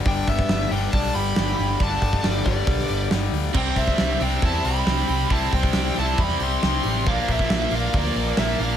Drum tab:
CC |----------------|----------------|x---------------|----------------|
HH |o-o-o-o-o-o-o-o-|o-o-o-o-o-o-o-o-|--o-o-o-o-o-o-o-|o-o-o-o-o-o-o-o-|
SD |----o-------o---|----o----o--o---|----o-------o---|----o----o--o---|
BD |o-oo----o-------|o-oo--o-o-------|o-oo----o-------|o-oo----o-------|

CC |----------------|
HH |o-o-o-o-o-o-o-o-|
SD |----o----o--o---|
BD |o-oo----o-------|